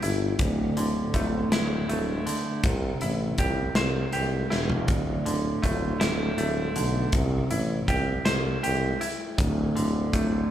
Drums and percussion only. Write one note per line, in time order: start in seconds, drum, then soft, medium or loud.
0.02 closed hi-hat medium
0.39 kick loud
0.39 closed hi-hat medium
0.77 closed hi-hat medium
1.14 kick medium
1.14 closed hi-hat medium
1.52 snare loud
1.52 closed hi-hat medium
1.89 closed hi-hat medium
2.27 closed hi-hat medium
2.63 kick loud
2.63 closed hi-hat medium
3.01 closed hi-hat medium
3.38 kick medium
3.38 closed hi-hat medium
3.75 snare loud
3.75 closed hi-hat medium
4.13 closed hi-hat medium
4.51 snare medium
4.70 floor tom medium
4.88 kick loud
4.88 closed hi-hat medium
5.26 closed hi-hat medium
5.64 kick medium
5.64 closed hi-hat medium
6.01 snare loud
6.01 closed hi-hat medium
6.38 closed hi-hat medium
6.76 closed hi-hat medium
7.12 kick loud
7.12 closed hi-hat medium
7.51 closed hi-hat medium
7.88 kick medium
7.88 closed hi-hat medium
8.26 snare medium
8.26 closed hi-hat medium
8.64 closed hi-hat medium
9.01 closed hi-hat medium
9.38 kick loud
9.38 closed hi-hat medium
9.77 closed hi-hat medium
10.13 kick medium
10.13 closed hi-hat medium